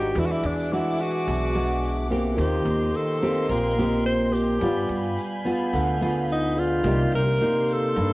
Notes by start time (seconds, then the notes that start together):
Already playing: G#1 G#2 G#3 D4 D#4 F4 F#4 G4 A#4 D#5 F5 C#6
0.14 E2 E3 F#4 G#4 E5 F#5 D6, shaker
0.18 E4 B4 D5
0.26 F#4
0.32 E4
0.43 E2 D4, shaker
0.72 G#3 D4 E4 F#4
0.98 F#4, shaker
1.27 B1 B2, shaker
1.55 G#3 D4 F#4, shaker
1.83 shaker
2.10 A#3 C4 G4, shaker
2.35 D#2 D#3 A#3 F4 G4 D#5 G5 C6, shaker
2.39 A#3 G4 C5
2.65 D#2, shaker
2.94 A4, shaker
3.22 A#3 C4 G4, shaker
3.49 A#1 A#2 A#4, shaker
3.78 A#3 C4 G4, shaker
4.06 C5
4.33 G4, shaker
4.58 G2 G3 B3 F4 G#5, shaker
4.62 F4 B4 D5 F5 G#5 B5 G6
4.89 G2, shaker
5.17 shaker
5.45 B3 F4 G#4, shaker
5.73 D2 D3, shaker
6.01 B3 F4 G#4, shaker
6.30 D#4, shaker
6.55 F4 G#4 B4 D5, shaker
6.59 F4
6.82 C2 C3 A#3 D#4 G4 C6, shaker
6.86 A#3 G4 D5
7.12 C2 A#4, shaker
7.40 A#3 D#4 G4, shaker
7.68 shaker
7.73 A4
7.95 G2, shaker